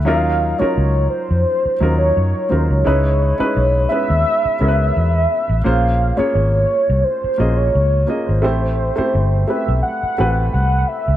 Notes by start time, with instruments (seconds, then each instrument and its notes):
0.05 fingered electric bass D#2, grand piano F#3 C#4 D#4 F4 A#4, soft synth lead F5
0.59 grand piano F#3 C#4 D#4 F4 A#4, soft synth lead C#5, muted fingered electric bass stroke
0.75 fingered electric bass C#2, soft synth lead C#5
1.10 soft synth lead C5
1.31 fingered electric bass F2
1.66 muted fingered electric bass stroke
1.80 fingered electric bass D#2, grand piano F#3 C#4 D#4 F4 A#4
1.98 soft synth lead C#5
2.17 fingered electric bass F#2
2.49 fingered electric bass D#2, grand piano F#3 C#4 D#4 F4 A#4, soft synth lead C5
2.67 fingered electric bass C#2, soft synth lead C#5
2.84 fingered electric bass C#2, grand piano G#3 C#4 D#4 E4 B4
3.38 grand piano G#3 C#4 D#4 E4 B4, muted fingered electric bass stroke
3.57 fingered electric bass B1
3.89 grand piano G#3 B3 C#4 E4 B4, soft synth lead E5
4.10 fingered electric bass D#2
4.45 muted fingered electric bass stroke
4.59 fingered electric bass C#2, grand piano G#3 B3 C#4 E4 A#4
4.68 grand piano B4
4.97 fingered electric bass E2
5.49 fingered electric bass A1
5.64 fingered electric bass A#1, grand piano A#3 C#4 F4 G#4 C5, soft synth lead F5
6.17 grand piano A#3 C#4 F4 G#4 C#5, soft synth lead C#5, muted fingered electric bass stroke
6.34 fingered electric bass G#1, soft synth lead C#5
6.90 fingered electric bass C2
7.04 soft synth lead C5
7.24 muted fingered electric bass stroke
7.38 fingered electric bass A#1, grand piano A#3 C#4 F4 G#4 D#5
7.57 soft synth lead C#5
7.75 fingered electric bass C#2
8.07 grand piano A#3 C#4 F4 G#4 D#5, soft synth lead A#4
8.26 fingered electric bass G#1, soft synth lead C5
8.42 fingered electric bass A1, grand piano A3 C4 E4 G4 C5
8.96 grand piano A3 C4 E4 G4 C5, muted fingered electric bass stroke
9.15 fingered electric bass G1
9.48 grand piano A3 C4 E4 G4 B4, soft synth lead E5
9.68 fingered electric bass B1
9.82 soft synth lead F#5
10.03 muted fingered electric bass stroke
10.18 fingered electric bass A1, grand piano A3 C4 E4 G4 B4
10.53 fingered electric bass C2, soft synth lead F#5
10.88 soft synth lead E5
11.08 fingered electric bass C#2